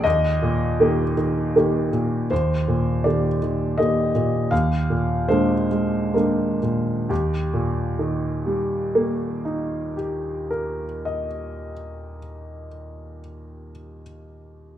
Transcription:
0.04 D#2 D#5
0.42 A#2
0.80 D#3 A#3 G4
1.17 D#3
1.56 D#3 A#3 G4
1.93 A#2
2.31 D#2 C5
2.68 A#2
3.04 D#3 A#3 G4 D5
3.43 D#3
3.78 D#3 A#3 G4 D#5
4.15 A#2
4.51 D#2 F5
4.90 A#2
5.28 G#3 A#3 D4 C5
5.71 G#3
6.14 G#3 A#3 D4 A#4
6.62 A#2
7.09 D#2 G4
7.54 A#2
7.99 D#3
8.46 G3
8.95 A#3
9.45 D#4
9.97 G4
10.51 A#4
11.05 D#5

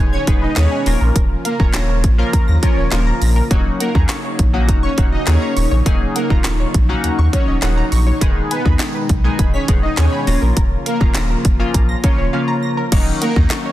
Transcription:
Already playing: B2 D#3 G#3 B3 D#4 G#4 C#5
0.00 D#1
0.13 C#4 C#5 G#6
0.27 D#1 G#3 B3 D#4 G#4 B4, kick, closed hi-hat
0.42 D#4 B4 D#5
0.56 D#2 G#3 B3 C#4 D#4 G#4 B4 C#5 D#5, snare, clap, closed hi-hat
0.71 G#5
0.86 D#1 C#3 F3 A#3 C#4 F4 A#4 A#6, open hi-hat
1.01 A#1 A#4
1.15 D#1 A#4, kick, closed hi-hat
1.45 A#3 A#4 F5, closed hi-hat
1.59 D#1 F3 A#3 C#4 F4 C#5 A#5, kick
1.73 D#1 A#6, snare, clap, closed hi-hat
1.89 A#4
2.04 A#1, kick, closed hi-hat
2.18 F3 A#3 C#4 F4 A#4 F5
2.33 D#2 A#5, kick, closed hi-hat
2.48 D#2 A#6
2.62 F3 A#3 C#4 F4 A#4 C#5, kick, closed hi-hat
2.77 D#1 C#5
2.92 D#1 F3 A#3 C#4 F4 A#4 F5, snare, clap, closed hi-hat
3.07 A#5
3.21 A#1 A#6, open hi-hat
3.36 A#4
3.51 D#1 C#3 F#3 A#3 C#4 D#4 F#4 C#5, kick, closed hi-hat
3.80 A#3 A#4 F#5, closed hi-hat
3.95 D#2 F#3 A#3 C#4 D#4 G#4 A#5, kick
4.09 C#6, snare, clap, closed hi-hat
4.24 C#5
4.39 A#1, kick, closed hi-hat
4.53 F#3 A#3 C#4 D#4 F#4 F#5
4.69 D#1 A#5, kick, closed hi-hat
4.83 C#4 C#5 C#6
4.98 D#1 F#3 A#3 C#4 D#4 F#4 C#5, kick, closed hi-hat
5.12 D#4 D#5
5.27 D#2 F#3 A#3 C#4 D#4 G#4 C#5 F#5, snare, clap, closed hi-hat
5.42 A#5
5.57 D#1 C#6, open hi-hat
5.71 A#1 C#5
5.86 D#1 F#3 A#3 C#4 D#4 G#4 C#5, kick, closed hi-hat
6.16 A#3 A#4 F#5, closed hi-hat
6.30 D#1 F#3 A#3 C#4 D#4 F4 A#5, kick
6.44 D#1 C#6, snare, clap, closed hi-hat
6.60 C#5
6.74 A#1, kick, closed hi-hat
6.89 F#3 A#3 C#4 D#4 F#4 F#5
7.04 D#2 A#5, closed hi-hat
7.18 D#2 C#6
7.33 F#3 A#3 C#4 D#4 F#4 C#5, kick, closed hi-hat
7.48 D#1 D#5
7.62 D#1 F#3 A#3 C#4 D#4 F#4 F#5, snare, clap, closed hi-hat
7.77 A#5
7.92 A#1 C#6, open hi-hat
8.07 C#5
8.21 D#1 B2 D#3 G#3 B3 D#4 G#4 B4, kick, closed hi-hat
8.51 B3 B4 G#5, closed hi-hat
8.65 D#2 D#3 G#3 B3 D#4 G#4 B5, kick
8.79 B6, snare, clap, closed hi-hat
8.95 B4
9.09 B1, kick, closed hi-hat
9.24 D#3 G#3 B3 D#4 G#4 G#5
9.39 D#1 B5, kick, closed hi-hat
9.54 C#4 C#5 B6
9.68 D#1 D#3 G#3 B3 D#4 G#4 B4, kick, closed hi-hat
9.83 D#4 D#5
9.97 D#2 D#3 G#3 B3 C#4 D#4 G#4 C#5 G#5, snare, clap, closed hi-hat
10.12 B5
10.27 D#1 C#3 F3 A#3 C#4 F4 A#6, open hi-hat
10.42 A#1 A#4
10.56 D#1 A#4, kick, closed hi-hat
10.86 A#3 A#4 F5, closed hi-hat
11.01 D#1 C#3 F3 A#3 C#4 F4 A#5, kick
11.14 D#1 A#6, snare, clap, closed hi-hat
11.30 A#4
11.45 F1, kick, closed hi-hat
11.59 C#3 F3 A#3 C#4 F4 F5
11.74 A#1 A#5, kick, closed hi-hat
11.89 A#6
12.03 D#1 C#3 F3 A#3 C#4 F4 A#4 C#5, kick, closed hi-hat
12.18 D#1 C#5
12.33 C#3 F3 A#3 C#4 F4 F5
12.48 A#5
12.63 A#6
12.77 A#4
12.92 D#1 D#3 F#3 A#3 C#4 D#4 A#4 C#5 D#5, kick, closed hi-hat, crash
13.21 A#3 A#4 F#5, closed hi-hat
13.36 D#2 D#3 F#3 A#3 C#4 D#4 A#5, kick
13.50 C#6, snare, clap, closed hi-hat
13.66 C#5

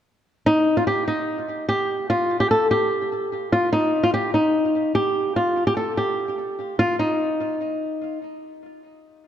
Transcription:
0.46 D#4
0.77 F4
0.87 G4
1.08 D#4
1.69 G4
2.10 F4
2.40 G4
2.51 A4
2.71 G4
3.52 F4
3.73 D#4
4.03 F4
4.14 G4
4.34 D#4
4.95 G4
5.36 F4
5.67 G4
5.77 A4
5.97 G4
6.79 F4
6.99 D#4

